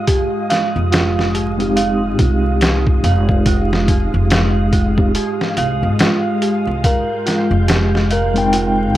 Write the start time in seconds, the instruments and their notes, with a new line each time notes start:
Already playing: string machine G#3 F5 D#6, synth bell F4 G4 F5
0.07 synth bell G4, kick, closed hi-hat
0.50 synth bell F5, snare, closed hi-hat
0.76 upright bass F1
0.92 synth bell F4, snare, closed hi-hat
1.19 snare
1.34 synth bell G4, closed hi-hat
1.58 tine electric piano G#3 C4 D#4 G4, closed hi-hat
1.76 synth bell F5, closed hi-hat
2.19 upright bass C2, synth bell F4, kick, closed hi-hat
2.61 synth bell G4, snare, closed hi-hat
2.87 kick
3.04 upright bass F1, synth bell F5, closed hi-hat
3.29 kick
3.46 synth bell F4, kick, closed hi-hat
3.73 snare
3.88 synth bell G4, kick, closed hi-hat
4.14 upright bass F1
4.30 synth bell F5, snare, closed hi-hat
4.73 synth bell F4, kick, closed hi-hat
4.97 tine electric piano G#3 C4 D#4 G4, kick
5.15 synth bell G4, closed hi-hat
5.41 snare
5.57 upright bass C2, synth bell F5, closed hi-hat
5.83 upright bass G#1
5.99 synth bell F4, snare, closed hi-hat
6.42 synth bell G4, closed hi-hat
6.67 upright bass C2
6.84 felt piano A#4, synth bell F5, string machine G6, kick, closed hi-hat
7.26 synth bell F4, snare, closed hi-hat
7.51 upright bass F1
7.68 synth bell G4, snare, closed hi-hat
7.95 snare
8.11 felt piano A#4, synth bell F5, closed hi-hat
8.34 tine electric piano G#3 C4 D#4 G5, closed hi-hat
8.53 synth bell F4, closed hi-hat